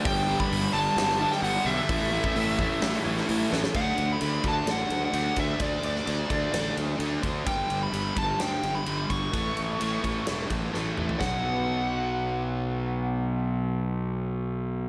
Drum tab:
CC |----------------|----------------|x---------------|----------------|
RD |----------------|----------------|--x-x-x-x-x-x-x-|x-x-x-x-x-x-x-x-|
HH |o---o---o---o---|o---o---o---o---|----------------|----------------|
SD |--------o--o----|--------o--o--oo|--------o-------|---o----o-------|
T2 |----------------|----------------|----------------|----------------|
FT |----------------|----------------|----------------|----------------|
BD |o--o------------|o--o--o---------|o-----o-------o-|o-----o-------o-|

CC |----------------|----------------|----------------|----------------|
RD |x-x-x-x-x-x-x-x-|x-x-x-x-x-x-----|----------------|----------------|
HH |----------------|----------------|----------------|----------------|
SD |--------o-------|--------o---o---|o---------------|----------------|
T2 |----------------|--------------o-|----------------|----------------|
FT |----------------|---------------o|----------------|----------------|
BD |o-----o-------o-|o-----o---o-----|o---------------|----------------|